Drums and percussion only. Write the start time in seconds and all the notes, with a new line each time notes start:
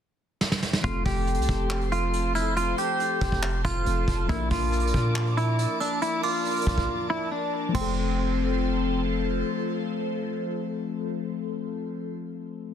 0.41 snare
0.52 snare
0.62 snare
0.73 snare
0.84 kick, closed hi-hat
1.05 kick, open hi-hat
1.27 closed hi-hat
1.34 closed hi-hat
1.42 closed hi-hat
1.48 kick, closed hi-hat
1.70 clap, closed hi-hat
1.81 closed hi-hat
1.92 closed hi-hat
2.13 closed hi-hat
2.35 closed hi-hat
2.57 closed hi-hat
2.78 closed hi-hat
3.00 closed hi-hat
3.21 kick, closed hi-hat
3.32 kick
3.43 clap, closed hi-hat
3.65 kick, closed hi-hat
3.86 closed hi-hat
4.08 kick, closed hi-hat
4.29 kick, closed hi-hat
4.51 kick, open hi-hat
4.73 closed hi-hat
4.80 closed hi-hat
4.87 closed hi-hat
4.94 kick, closed hi-hat
5.16 clap, closed hi-hat
5.27 closed hi-hat
5.37 closed hi-hat
5.59 closed hi-hat
5.81 closed hi-hat
6.02 closed hi-hat
6.23 open hi-hat
6.45 closed hi-hat
6.51 closed hi-hat
6.56 closed hi-hat
6.61 closed hi-hat
6.67 kick
6.78 kick
7.75 kick, crash